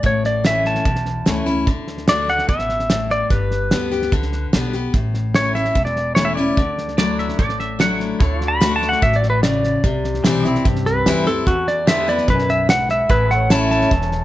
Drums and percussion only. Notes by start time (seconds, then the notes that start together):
0.04 kick, snare
0.24 snare
0.45 snare, hi-hat pedal
0.65 snare
0.75 snare
0.85 kick, snare
0.96 snare
1.06 snare
1.26 snare, hi-hat pedal
1.46 snare
1.67 kick, snare
1.87 snare
1.98 snare
2.08 snare, hi-hat pedal
2.28 snare
2.39 snare
2.49 kick, snare
2.59 snare
2.69 snare
2.80 snare
2.90 snare, hi-hat pedal
3.10 snare
3.30 kick, snare
3.51 snare
3.71 snare, hi-hat pedal
3.92 snare
4.02 snare
4.12 kick, snare
4.23 snare
4.32 snare
4.53 snare, hi-hat pedal
4.73 snare
4.94 kick, snare
5.14 snare
5.35 snare, hi-hat pedal
5.55 snare
5.65 snare
5.75 kick, snare
5.86 snare
5.96 snare
6.16 snare, hi-hat pedal
6.37 snare
6.57 kick, snare
6.78 snare
6.88 snare
6.98 snare, hi-hat pedal
7.19 snare
7.29 snare
7.39 kick, snare
7.49 snare
7.60 snare
7.80 snare, hi-hat pedal
8.00 snare
8.20 kick, snare
8.41 snare
8.61 snare, hi-hat pedal
8.82 snare
8.92 snare
9.02 kick, snare
9.13 snare
9.23 snare
9.43 snare, hi-hat pedal
9.64 snare
9.84 kick, snare
10.04 snare
10.14 snare
10.24 snare, hi-hat pedal
10.45 snare
10.55 snare
10.65 kick, snare
10.76 snare
10.86 snare
11.06 snare, hi-hat pedal
11.27 snare
11.47 kick, snare
11.67 snare
11.87 snare, hi-hat pedal
12.08 snare
12.18 snare
12.28 kick, snare
12.39 snare
12.49 snare
12.69 snare, hi-hat pedal
12.89 snare
13.10 kick, snare
13.30 snare
13.50 snare, hi-hat pedal
13.71 snare
13.81 snare
13.91 kick, snare
14.01 snare
14.12 snare